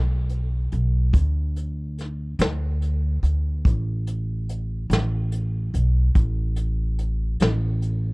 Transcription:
Already playing: B1
0.29 closed hi-hat
0.72 B1, closed hi-hat
1.13 D2, kick, closed hi-hat
1.56 closed hi-hat
1.98 snare, closed hi-hat
2.39 D2, snare, closed hi-hat
2.82 closed hi-hat
3.23 D2, closed hi-hat
3.65 A1, kick, closed hi-hat
4.07 closed hi-hat
4.49 closed hi-hat
4.90 A1, snare, closed hi-hat
5.32 closed hi-hat
5.74 B1, closed hi-hat
6.15 A1, kick, closed hi-hat
6.56 closed hi-hat
6.99 closed hi-hat
7.40 A1, snare, closed hi-hat
7.82 closed hi-hat

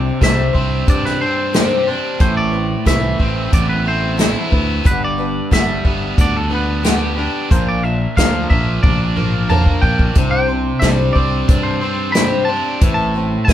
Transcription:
Already playing: C3 C4 D4 C5 D5
0.21 C2 C3 G3 C4 D4 C5 E5, kick, snare, closed hi-hat
0.53 C2 C4 D4 C5, kick
0.87 G2 G3 C4 D4 C5 D5, kick, closed hi-hat
1.05 B4, snare
1.21 C4 D4 C5
1.53 C3 G3 C4 D4 G4 C5, snare, closed hi-hat
1.87 C4 D4 C5
2.20 A1 A2 E3 A3 C4 E4 B4 C5, kick, closed hi-hat
2.37 D5
2.52 A3 C4 E4 B4
2.85 C2 A2 E3 A3 C4 E4 B4 E5, kick, snare, closed hi-hat
3.18 A1 A3 C4 E4 B4, kick
3.51 A1 A3 B3 E4 B4 D5, kick, closed hi-hat
3.69 B4
3.85 A3 C4 E4 C5
4.18 A2 E3 A3 E4, snare, closed hi-hat
4.50 D2 A3 B3 E4 B4, kick
4.84 G1 G2 D3 G3 B3 D4 B4, kick, closed hi-hat
5.04 D5
5.18 G3 B3 D4 B4
5.51 G1 G2 D3 G3 B3 D4 B4 E5, kick, snare, closed hi-hat
5.84 G1 G3 B3 D4 B4, kick
6.18 D2 G3 B3 D4 B4 D5, kick, closed hi-hat
6.36 A4
6.50 G3 B3 D4 B4
6.55 B4
6.83 G2 D3 G3 B3 D4 G4 B4, snare, closed hi-hat
7.17 G3 B3 D4 B4
7.50 A#1 A#2 D3 F3 A#3 D4 A#4 C5, kick, closed hi-hat
7.69 D5
7.83 F3 A#3 D4 A#4 E5
8.17 D2 A#2 D3 F3 A#3 D4 A#4 F5, kick, snare, closed hi-hat
8.50 A#1 F3 A#3 D4 A#4 E5, kick
8.83 A#1 F3 A#3 D4 A#4 D5, kick, high tom
9.16 F3 A#3 D4 A#4, mid tom
9.49 A#2 D3 F3 A#3 D4 A#4 A5, mid tom
9.66 kick
9.82 A#1 F3 A#3 D4 A#4 G5, kick
9.99 kick
10.15 C2 C3 G3 C4 D4 C5, kick, closed hi-hat
10.31 G5
10.48 C4 D4 C5
10.79 C2 C3 G3 C4 D4 C5 E5, kick, snare, closed hi-hat
11.13 C2 D4 C5 D5, kick
11.17 C4
11.47 G2 G3 C4 D4 C5, kick, closed hi-hat
11.63 C5
11.81 C4 D4 C5
12.12 C3 G3 C4 D4 G4 C5 B5, snare, closed hi-hat
12.45 D4 C5 A5
12.49 C4
12.81 A1 A2 E3 A3 C4 E4 B4, kick, closed hi-hat
12.94 A5
13.14 A3 C4 E4 B4
13.45 C2 A2 E3 A3 C4 F5, kick, closed hi-hat
13.49 B4, snare

